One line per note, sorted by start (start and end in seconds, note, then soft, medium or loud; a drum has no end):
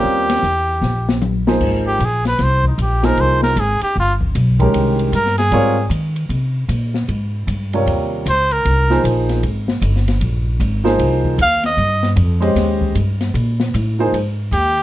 0.00 0.41 D#2 medium
0.00 0.40 G3 medium
0.00 0.41 C4 medium
0.00 0.41 C#4 medium
0.00 0.41 F4 medium
0.00 1.24 G4 medium
0.00 0.41 A#4 medium
0.30 snare soft
0.30 ride medium
0.43 0.80 E2 medium
0.43 hi-hat pedal medium
0.82 1.56 A#1 medium
0.82 snare soft
1.09 snare medium
1.22 hi-hat pedal soft
1.22 high tom medium
1.47 1.98 F3 medium
1.47 1.97 A#3 medium
1.47 1.98 D#4 medium
1.47 1.98 G#4 medium
1.47 1.98 C5 medium
1.47 snare medium
1.61 1.99 G#1 medium
1.61 kick medium
1.61 crash medium
1.87 2.06 G4 medium
1.99 2.38 A#1 medium
1.99 hi-hat pedal medium
1.99 ride medium
2.05 2.27 G#4 medium
2.25 2.45 B4 medium
2.25 snare soft
2.25 ride soft
2.39 2.77 C2 medium
2.39 snare soft
2.39 ride soft
2.43 2.66 C5 medium
2.64 2.83 D#4 soft
2.64 kick soft
2.78 3.16 A#1 medium
2.78 hi-hat pedal soft
2.78 ride medium
2.82 3.06 G4 medium
3.03 3.53 F3 medium
3.03 3.53 A#3 medium
3.03 3.54 D#4 medium
3.03 3.54 G#4 medium
3.03 3.22 A#4 medium
3.03 3.54 C5 medium
3.03 snare medium
3.03 ride soft
3.17 3.55 C2 medium
3.17 3.43 C5 medium
3.17 ride medium
3.43 3.61 A#4 medium
3.43 snare soft
3.56 3.80 G#1 medium
3.56 3.82 G#4 medium
3.56 hi-hat pedal medium
3.56 ride medium
3.81 3.96 G4 medium
3.81 muted upright bass stroke soft
3.81 ride medium
3.96 4.34 G1 medium
4.00 4.13 F4 medium
4.21 kick medium
4.35 4.73 B1 medium
4.35 hi-hat pedal medium
4.35 ride medium
4.59 5.10 D#3 medium
4.59 5.10 G#3 medium
4.59 5.11 C#4 medium
4.59 5.11 G4 medium
4.59 5.11 A#4 medium
4.59 kick medium
4.59 ride soft
4.74 5.12 C2 medium
4.74 ride medium
4.99 ride soft
5.12 5.51 G2 medium
5.12 5.38 A#4 medium
5.12 hi-hat pedal medium
5.12 ride medium
5.26 snare soft
5.38 5.88 G#4 medium
5.38 snare soft
5.38 ride soft
5.51 5.89 G#2 medium
5.51 5.75 G3 medium
5.51 5.75 C4 medium
5.51 5.75 F4 medium
5.51 5.75 A#4 medium
5.51 5.75 C#5 medium
5.51 ride medium
5.90 6.28 D#3 medium
5.90 hi-hat pedal soft
5.90 ride medium
6.16 ride soft
6.29 6.68 C3 medium
6.29 ride medium
6.69 7.07 A#2 medium
6.69 hi-hat pedal medium
6.69 ride medium
6.94 snare soft
7.08 7.46 G#2 medium
7.08 ride medium
7.47 7.85 G2 medium
7.47 hi-hat pedal soft
7.47 ride medium
7.73 8.24 C3 medium
7.73 8.24 G3 medium
7.73 8.24 F4 medium
7.73 8.24 A#4 soft
7.73 8.24 C#5 medium
7.73 ride soft
7.86 8.25 D#2 medium
7.86 ride medium
8.26 8.64 C#2 medium
8.26 8.54 C5 medium
8.26 hi-hat pedal medium
8.26 ride medium
8.51 9.05 A#4 medium
8.51 ride soft
8.65 9.03 C2 medium
8.65 ride medium
8.90 9.41 F3 medium
8.90 9.41 A#3 medium
8.90 9.41 D#4 medium
8.90 9.41 G#4 medium
8.90 9.41 C5 medium
8.90 snare soft
9.04 9.42 A#1 medium
9.04 hi-hat pedal medium
9.04 ride medium
9.29 snare soft
9.29 ride soft
9.43 9.81 G#1 medium
9.43 ride medium
9.68 snare medium
9.81 10.20 G1 medium
9.81 hi-hat pedal medium
9.81 ride medium
9.96 snare soft
10.08 snare soft
10.08 ride soft
10.21 10.59 A#1 medium
10.21 ride medium
10.60 10.98 G#1 medium
10.60 hi-hat pedal medium
10.60 ride medium
10.84 11.35 F3 medium
10.84 11.36 A#3 medium
10.84 11.36 D#4 medium
10.84 11.36 G#4 medium
10.84 11.36 C5 medium
10.84 snare soft
10.98 11.37 C2 medium
10.98 ride medium
11.24 kick medium
11.38 11.77 D#2 medium
11.38 hi-hat pedal medium
11.38 ride medium
11.42 11.64 F5 loud
11.63 12.15 D#5 medium
11.63 snare soft
11.63 ride soft
11.77 12.16 G2 medium
11.77 ride medium
12.03 snare soft
12.16 12.54 F2 loud
12.16 hi-hat pedal medium
12.16 ride medium
12.40 12.92 G#3 medium
12.40 12.92 C#4 medium
12.40 12.93 G4 medium
12.40 12.92 C5 medium
12.40 12.93 D#5 medium
12.40 ride soft
12.55 12.94 D#2 medium
12.55 snare soft
12.55 ride medium
12.81 kick medium
12.95 13.33 G2 medium
12.95 hi-hat pedal medium
12.95 ride medium
13.21 snare soft
13.21 ride soft
13.34 13.72 A#2 medium
13.34 ride medium
13.60 snare medium
13.74 14.12 A2 loud
13.74 hi-hat pedal medium
13.74 ride medium
13.99 14.13 F3 medium
13.99 14.13 A#3 medium
13.99 14.14 D#4 medium
13.99 14.14 G#4 medium
13.99 14.14 C5 medium
14.13 14.51 G#2 medium
14.13 ride medium
14.51 14.83 D#2 medium
14.51 14.83 G4 medium
14.51 hi-hat pedal medium
14.51 ride medium
14.77 ride soft